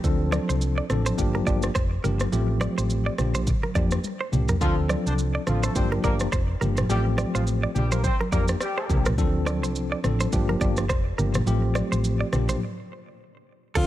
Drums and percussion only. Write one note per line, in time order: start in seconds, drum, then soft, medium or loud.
0.04 kick loud
0.04 shaker medium
0.32 cross-stick medium
0.32 high conga medium
0.32 shaker soft
0.50 shaker medium
0.61 shaker medium
0.90 cross-stick medium
0.90 low conga medium
0.90 shaker soft
1.06 high conga medium
1.06 shaker medium
1.18 kick medium
1.18 shaker medium
1.35 high conga medium
1.47 kick medium
1.47 shaker medium
1.62 cross-stick medium
1.62 shaker medium
1.75 kick loud
1.75 cross-stick medium
1.75 shaker medium
2.04 low conga medium
2.04 shaker soft
2.20 cross-stick medium
2.20 high conga medium
2.20 shaker medium
2.33 shaker medium
2.61 cross-stick medium
2.61 high conga medium
2.61 shaker soft
2.78 shaker medium
2.90 shaker medium
3.18 cross-stick medium
3.18 low conga medium
3.18 shaker soft
3.35 mid tom medium
3.35 high conga medium
3.35 shaker medium
3.47 kick medium
3.47 low conga medium
3.47 shaker medium
3.64 high conga medium
3.75 kick medium
3.75 shaker medium
3.91 cross-stick medium
3.91 shaker medium
4.04 high tom medium
4.04 shaker medium
4.33 mid tom medium
4.33 low conga medium
4.33 shaker soft
4.48 floor tom medium
4.48 high conga medium
4.48 shaker medium
4.61 kick loud
4.61 shaker medium
4.89 cross-stick medium
4.89 high conga medium
4.89 shaker soft
5.07 shaker medium
5.18 shaker medium
5.47 cross-stick medium
5.47 low conga medium
5.47 shaker soft
5.63 high conga medium
5.63 shaker medium
5.76 kick medium
5.76 shaker medium
5.92 high conga medium
6.04 kick medium
6.04 shaker medium
6.20 cross-stick medium
6.20 shaker medium
6.32 kick loud
6.32 cross-stick medium
6.32 shaker medium
6.62 low conga medium
6.62 shaker soft
6.77 cross-stick loud
6.77 mid tom loud
6.77 high conga medium
6.77 shaker medium
6.90 shaker medium
7.18 cross-stick medium
7.18 high conga medium
7.18 shaker soft
7.35 shaker medium
7.47 shaker medium
7.76 low conga medium
7.76 shaker soft
7.92 high conga medium
7.92 shaker medium
8.04 kick medium
8.04 shaker medium
8.21 high conga medium
8.32 kick medium
8.32 shaker medium
8.48 cross-stick medium
8.48 shaker medium
8.60 cross-stick medium
8.60 shaker medium
8.90 kick loud
8.90 low conga medium
8.90 shaker soft
9.05 cross-stick medium
9.05 mid tom loud
9.05 high conga medium
9.05 shaker medium
9.18 kick loud
9.18 shaker medium
9.46 cross-stick medium
9.46 high conga medium
9.46 shaker soft
9.64 shaker medium
9.76 shaker medium
10.04 cross-stick medium
10.04 low conga medium
10.04 shaker soft
10.20 high conga medium
10.20 shaker medium
10.33 kick medium
10.33 shaker medium
10.49 high conga medium
10.61 kick medium
10.61 shaker medium
10.77 cross-stick medium
10.77 shaker medium
10.89 kick loud
10.89 cross-stick medium
10.89 shaker medium
11.19 low conga medium
11.19 shaker soft
11.34 cross-stick loud
11.34 mid tom loud
11.34 high conga medium
11.34 shaker medium
11.47 shaker medium
11.75 cross-stick medium
11.75 high conga medium
11.75 shaker soft
11.92 shaker medium
12.04 shaker medium
12.33 cross-stick medium
12.33 low conga medium
12.33 shaker soft
12.49 mid tom medium
12.49 high conga medium
12.49 shaker medium
13.75 kick loud
13.75 crash medium
13.75 shaker medium